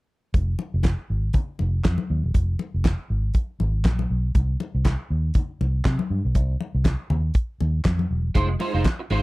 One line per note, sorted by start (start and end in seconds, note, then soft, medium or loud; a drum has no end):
0.34 0.54 F1 medium
0.34 kick loud
0.34 closed hi-hat medium
0.34 muted conga soft
0.59 muted conga medium
0.74 0.93 F1 medium
0.83 kick medium
0.83 snare loud
0.83 clap medium
0.83 closed hi-hat medium
0.83 high conga medium
1.10 1.29 G#1 medium
1.33 kick loud
1.33 closed hi-hat medium
1.33 low conga medium
1.59 1.80 F1 medium
1.59 muted conga soft
1.84 1.96 F2 medium
1.84 kick medium
1.84 snare loud
1.84 clap medium
1.84 closed hi-hat medium
1.84 high conga medium
1.98 high conga medium
2.10 2.21 D#2 medium
2.24 2.33 E1 medium
2.34 2.55 F1 medium
2.34 kick loud
2.34 closed hi-hat medium
2.34 muted conga soft
2.59 muted conga medium
2.74 2.94 F1 medium
2.84 kick medium
2.84 snare loud
2.84 clap medium
2.84 closed hi-hat medium
2.84 high conga medium
3.10 3.30 G#1 medium
3.34 kick loud
3.34 closed hi-hat medium
3.34 muted conga soft
3.60 3.85 G#1 medium
3.60 muted conga medium
3.85 4.05 A#1 medium
3.85 kick loud
3.85 snare loud
3.85 clap medium
3.85 closed hi-hat medium
3.85 high conga medium
3.99 high conga medium
4.10 4.30 B1 medium
4.35 4.55 C2 medium
4.35 kick loud
4.35 closed hi-hat medium
4.35 muted conga medium
4.60 muted conga medium
4.75 4.94 C2 medium
4.85 kick loud
4.85 snare medium
4.85 clap medium
4.85 closed hi-hat medium
4.85 high conga medium
5.10 5.30 D#2 medium
5.34 kick loud
5.34 closed hi-hat medium
5.34 muted conga soft
5.34 low conga medium
5.61 5.80 C2 medium
5.61 muted conga soft
5.85 5.96 C3 medium
5.85 kick loud
5.85 snare loud
5.85 clap medium
5.85 closed hi-hat medium
5.85 high conga medium
5.99 high conga medium
6.10 6.21 G2 medium
6.25 6.36 B1 medium
6.35 6.55 C2 loud
6.35 kick loud
6.35 closed hi-hat medium
6.35 muted conga medium
6.61 muted conga medium
6.75 6.94 C2 medium
6.85 kick medium
6.85 snare loud
6.85 clap medium
6.85 closed hi-hat medium
6.85 high conga medium
7.10 7.30 D#2 medium
7.10 low conga medium
7.34 kick loud
7.34 closed hi-hat medium
7.61 7.80 D#2 medium
7.61 muted conga medium
7.85 8.05 F2 medium
7.85 kick loud
7.85 snare loud
7.85 clap medium
7.85 closed hi-hat medium
7.85 high conga medium
7.99 high conga medium
8.10 8.30 E1 medium
8.35 8.55 F1 medium
8.35 8.53 G#3 medium
8.35 8.49 D#4 medium
8.35 8.49 F4 medium
8.35 8.48 C5 medium
8.35 kick loud
8.35 closed hi-hat medium
8.35 muted conga medium
8.49 muted clean electric guitar stroke soft
8.60 8.74 G#3 medium
8.60 8.74 D#4 medium
8.60 8.73 F4 medium
8.60 8.73 C5 medium
8.60 open hi-hat medium
8.60 muted conga medium
8.74 8.83 F1 medium
8.74 8.84 G#3 soft
8.74 8.85 D#4 medium
8.74 8.85 F4 medium
8.74 8.85 C5 medium
8.84 muted clean electric guitar stroke soft
8.84 kick medium
8.84 snare loud
8.84 clap medium
8.84 closed hi-hat medium
8.84 high conga medium
8.99 muted clean electric guitar stroke soft
9.10 9.22 G#1 medium
9.10 9.22 G#3 medium
9.10 9.22 D#4 medium
9.10 9.22 F4 loud
9.10 9.22 C5 medium
9.10 open hi-hat medium